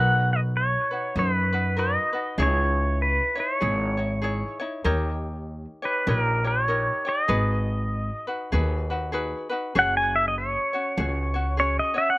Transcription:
Already playing: B1 D#4 F#4 A#4 B4 F#5
0.33 D#5
0.57 C#5
0.91 D#4 F#4 B4
1.16 F#2 D#4 F#4 B4
1.53 D#4 F#4 B4
1.77 D#4 F#4 A#4 B4 D#5
2.13 D#4 F#4 B4
2.38 C#2 D#4 E4 G#4 C#5
2.43 C#5
3.02 B4
3.35 D#4 E4 C#5
3.40 C#5
3.60 G#1 D#4 E4 G#4 C#5
3.97 D#4 E4 C#5
4.22 D#4 E4 G#4 C#5
4.60 D#4 E4 C#5
4.84 D#2 D#4 G4 A#4 C#5
5.82 D#4 G4 B4 C#5
6.07 A#1 D#4 G4 A#4 C#5
6.44 D#4 G4 C#5
6.68 D#4 G4 A#4 C#5
7.05 D#4 G4 C#5 D#5
7.28 G#1 D#4 F#4 G#4 B4
8.27 D#4 F#4 B4
8.52 D#2 D#4 F#4 G#4 B4
8.90 D#4 F#4 B4
9.12 D#4 F#4 G#4 B4
9.50 D#4 F#4 B4
9.75 F#1 C#4 F#4 G#4 C#5 F#5
9.97 G#5
10.16 E5
10.28 D#5
10.38 C#5
10.73 C#4 F#4 C#5
10.97 C#2 C#4 F#4 G#4 C#5
11.34 C#4 F#4 C#5
11.57 C#4 F#4 G#4 C#5
11.79 D#5
11.94 C#4 F#4 C#5 E5
12.10 F#5

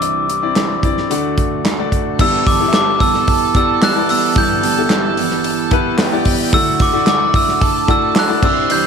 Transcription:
Already playing: C2 C3 E3 G3 C4 D4 E4 D5 D6
0.02 closed hi-hat
0.29 G3 D4 E4, closed hi-hat
0.42 C4 E4 D5
0.55 E3 G3 D4 E4, snare, clap, closed hi-hat
0.83 C4 E4 D5, kick, closed hi-hat
0.97 snare
1.10 D2 D3 A3 D4 F#4 D5, closed hi-hat
1.38 kick, closed hi-hat
1.64 D3 A3 D4 F#4, snare, clap, closed hi-hat
1.78 A3 F#4 D5
1.92 kick, closed hi-hat
2.19 G1 G2 D3 E3 G3 B3 E4 G4 A4 D5 A5 E6, kick, crash
2.46 E3 G3 B3 E4 D6, kick, hi-hat pedal, open hi-hat
2.60 B3 E4 G4 D5
2.68 E5
2.72 E3 G3 B3 E4 D6, snare, clap, hi-hat pedal, open hi-hat
3.00 E3 G3 B3 E4 E6, kick, hi-hat pedal, open hi-hat
3.14 snare
3.27 kick, hi-hat pedal, open hi-hat
3.55 B3 E4 G4 D5 E6, kick, hi-hat pedal, open hi-hat
3.82 E3 G3 B3 E4 F#6, snare, clap, hi-hat pedal, open hi-hat
3.96 B3 E4 G4 D5
4.09 E3 G3 B3 E4 E6, hi-hat pedal, open hi-hat
4.36 G1 G2 D3 E3 G3 B3 E4 G4 D5 G6, kick, hi-hat pedal, open hi-hat
4.63 E3 G3 B3 E4, hi-hat pedal, open hi-hat
4.77 B3 E4 G4 A4
4.90 E3 G3 B3 E4, snare, clap, hi-hat pedal, open hi-hat
5.17 E3 G3 B3 E4, hi-hat pedal, open hi-hat
5.31 snare
5.44 hi-hat pedal, open hi-hat
5.71 B3 E4 G4 B4, kick, hi-hat pedal, open hi-hat
5.98 E3 G3 B3 E4 G4 G5, snare, clap, hi-hat pedal, open hi-hat
6.12 B3 E4 G4 D5
6.25 E3 G3 B3 E4, kick, hi-hat pedal, open hi-hat
6.53 D2 D3 F#3 A3 D4 E4 F#4 D5 F#5 E6, kick, hi-hat pedal, open hi-hat
6.79 A3 D4 E4 D6, kick, hi-hat pedal, open hi-hat
6.93 A3 E4 F#4 D5
7.06 F#3 A3 D4 E4 D6, snare, clap, hi-hat pedal, open hi-hat
7.34 A3 D4 E4 E6, kick, hi-hat pedal, open hi-hat
7.48 snare
7.61 A4 A5, kick, hi-hat pedal, open hi-hat
7.88 A3 E4 F#4 D5 E6, kick, hi-hat pedal, open hi-hat
8.15 F#3 A3 D4 E4 F#6, snare, clap, hi-hat pedal, open hi-hat
8.28 A3 E4 F#4 D5
8.41 C2 C3 G3 C4 D4 E4 G4 C5 D5 C6 E6, kick, crash
8.70 C3 E3 G3 D4 E4 G6, hi-hat pedal, open hi-hat

